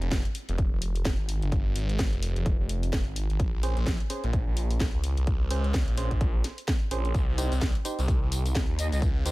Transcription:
0.02 F1, closed hi-hat
0.11 kick, snare, closed hi-hat
0.25 closed hi-hat
0.35 open hi-hat
0.49 F1, closed hi-hat
0.58 kick, closed hi-hat
0.72 F1
0.82 open hi-hat
0.96 open hi-hat
1.05 kick, snare, closed hi-hat
1.19 G#1
1.29 open hi-hat
1.42 G1, closed hi-hat
1.52 kick, closed hi-hat
1.76 G#1, open hi-hat
1.89 closed hi-hat
1.99 kick, snare, closed hi-hat
2.13 F1, closed hi-hat
2.23 open hi-hat
2.36 F1, closed hi-hat
2.46 kick, closed hi-hat
2.60 F1
2.69 open hi-hat
2.83 open hi-hat
2.93 kick, snare, closed hi-hat
3.06 G#1
3.16 open hi-hat
3.30 G#1, closed hi-hat
3.40 A#1, kick, closed hi-hat
3.53 A#1
3.63 C#4 G#4 C5, open hi-hat
3.77 A#1, closed hi-hat
3.87 kick, snare, closed hi-hat
4.00 closed hi-hat
4.10 C#4 G#4 C5, open hi-hat
4.24 A#1, closed hi-hat
4.33 kick, closed hi-hat
4.47 A#1
4.57 open hi-hat
4.71 open hi-hat
4.80 kick, snare, closed hi-hat
4.94 C#2
5.04 open hi-hat
5.17 C2, closed hi-hat
5.27 kick, closed hi-hat
5.50 C#2 C#4 G#4 C5, open hi-hat
5.64 closed hi-hat
5.74 kick, snare, closed hi-hat
5.88 A#1, closed hi-hat
5.97 C#4 G#4 C5, open hi-hat
6.11 A#1, kick, closed hi-hat
6.21 A#1, kick, closed hi-hat
6.44 snare, open hi-hat
6.58 open hi-hat
6.68 kick, snare, closed hi-hat
6.91 A#1 C#4 G#4 C5, open hi-hat
7.05 closed hi-hat
7.15 C2, kick, closed hi-hat, tambourine
7.28 C2
7.38 D#4 G4 C5, open hi-hat, tambourine
7.52 C2, closed hi-hat, tambourine
7.61 kick, snare, closed hi-hat, tambourine
7.75 closed hi-hat
7.85 D#4 G4 C5, open hi-hat, tambourine
7.99 C2, closed hi-hat, tambourine
8.08 kick, closed hi-hat, tambourine
8.22 C2
8.32 open hi-hat, tambourine
8.46 open hi-hat, tambourine
8.55 kick, snare, closed hi-hat, tambourine
8.69 D#2
8.79 D#5, open hi-hat, tambourine
8.92 C#2 D#5, closed hi-hat, tambourine
9.02 kick, closed hi-hat, tambourine
9.26 D#2 D#4 G4 C5, open hi-hat, tambourine

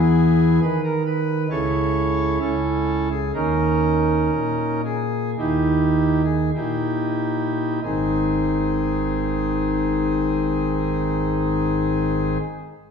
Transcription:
Already playing: E2 E3 B3 E4 G#4
0.63 D#3 B4
0.84 A#4
1.06 B4
1.50 C#2 C#3 E4 A4 C#5
2.40 C#2 C#4 E4 A4
3.11 G#4
3.35 D#2 D#3 C#4 D#4 A#4
4.33 A#2
4.85 G#4
5.38 D#2 D#3 D#4 E4 G4
6.24 G#4
6.56 A#2 D#4 E4 G4
7.83 G#1 G#2 D#3 C4 D#4 G#4

